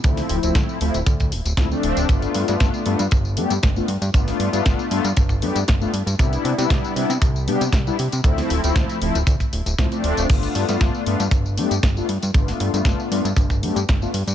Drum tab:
CC |----------------|----------------|----------------|----------------|
HH |xooxx-oxxxoxx-ox|xxoxx-oxx-oxx-ox|xooxx-oxx-oxx-ox|xxoxx-oxx-oxx-ox|
TB |xx-xxx-xxx-xxx-x|xx-xxx-xxx-xxx-x|xx-xxx-xxx-xxx-x|xx-xxx-xxx-xxx-x|
SD |-o--o-------o---|---oo-------o---|-o--o-------o---|---oo-------o---|
BD |o---o---oo--o---|o---o---o---o---|o---o---oo--o---|o---o---o---o---|

CC |----------------|x---------------|----------------|
HH |xooxxxoxxxoxxxox|xxoxx-oxx-oxx-ox|xooxx-oxx-oxx-ox|
TB |xx-xxx-xxx-xxx-x|xx-xxx-xxx-xxx-x|xx-xxx-xxx-xxx-x|
SD |-o--o-------o---|---oo-------o---|-o--o-------o---|
BD |o---o---oo--o---|o---o---o---o---|o---o---oo--o---|